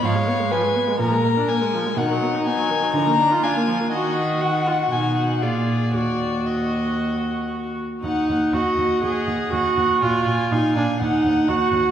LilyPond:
<<
  \new Staff \with { instrumentName = "Violin" } { \time 4/4 \key ees \minor \tempo 4 = 122 f''4 aes''4 bes''4 aes''4 | fis''4 aes''4 bes''4 aes''4 | ees''4 ges''4 aes''8 fis''8 d''4 | d''4 ees''2 r4 |
ges''4 ees''4 ees''2 | d''4 f''4 ges''2 | }
  \new Staff \with { instrumentName = "Violin" } { \time 4/4 \key ees \minor des''4 ces''4 bes'2 | dis'2. f'4 | ges'2. f'4 | ges'2.~ ges'8 r8 |
ges''8 ges''8 ges''8 ges''8 ges''8 ges''8 ges''8 ges''8 | aes''8 aes''8 aes''8 aes''8 ges''8 ges''8 ges''8 ges''8 | }
  \new Staff \with { instrumentName = "Viola" } { \time 4/4 \key ees \minor f16 aes16 ces'16 aes16 f16 aes16 ces'16 aes16 f16 aes16 bes16 d'16 bes16 aes16 f16 aes16 | dis16 fis16 b16 dis'16 b16 fis16 dis16 fis16 f16 bes16 d'16 f'16 d'16 bes16 f16 bes16 | ges'4 ges'8 f'8 dis'4 aes'4 | ges'4 ges'2~ ges'8 r8 |
ees'4 ges'4 aes'4 ges'4 | f'4 ees'8 d'8 ees'4 ges'4 | }
  \new Staff \with { instrumentName = "Cello" } { \clef bass \time 4/4 \key ees \minor aes,4 r4 bes,4 r4 | b,4 r4 d4 r4 | ees2 b,4 bes,4 | ees,2.~ ees,8 r8 |
ees,8 ees,8 ees,8 ees,8 ees,8 ees,8 ees,8 ees,8 | bes,8 bes,8 bes,8 bes,8 ees,8 ees,8 ees,8 ees,8 | }
>>